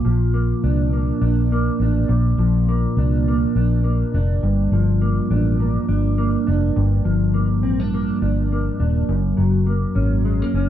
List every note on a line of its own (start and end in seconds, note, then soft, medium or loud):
0.00 2.07 A#2 medium
0.05 0.52 A#1 medium
0.05 2.39 F3 medium
0.34 0.93 A#3 medium
0.64 1.11 C2 medium
0.64 1.21 D4 medium
0.93 1.52 A#3 medium
1.21 1.69 A#1 medium
1.21 1.82 D4 medium
1.52 2.68 A#3 medium
1.80 2.04 A1 medium
1.80 2.98 D4 medium
2.09 2.33 A#1 loud
2.09 4.43 A#2 medium
2.38 2.85 A#1 medium
2.38 4.73 F3 medium
2.69 3.28 A#3 medium
2.97 3.44 C2 medium
2.97 3.56 D4 medium
3.28 3.84 A#3 medium
3.56 4.02 A#1 medium
3.56 4.14 D4 medium
3.84 5.01 A#3 medium
4.14 4.37 F1 medium
4.14 5.30 D4 medium
4.43 4.67 G1 medium
4.43 6.75 G2 medium
4.72 5.19 G1 medium
4.72 7.04 F3 medium
5.02 5.60 A#3 medium
5.30 5.77 A1 medium
5.30 5.87 D4 medium
5.60 6.18 A#3 medium
5.89 6.35 G1 medium
5.89 6.46 D4 medium
6.18 7.34 A#3 medium
6.47 6.71 F1 medium
6.47 7.63 D4 medium
6.76 7.00 G1 medium
6.76 9.09 G2 medium
7.05 7.64 G1 medium
7.05 9.15 F3 medium
7.34 7.94 A#3 medium
7.63 8.10 A1 medium
7.63 7.80 C4 medium
7.80 8.21 D4 medium
7.94 8.52 A#3 medium
8.22 8.68 G1 medium
8.22 8.79 D4 medium
8.52 9.66 A#3 medium
8.80 9.03 D#1 medium
8.80 9.15 D4 medium
9.09 9.32 F#1 medium
9.09 10.69 F#2 medium
9.37 9.85 F#1 medium
9.37 10.69 F#3 medium
9.66 10.25 A#3 medium
9.95 10.42 G#1 medium
9.95 10.54 C#4 medium
10.25 10.42 G#3 medium
10.42 10.69 A#3 soft
10.54 10.69 F#1 medium
10.54 10.69 C#4 medium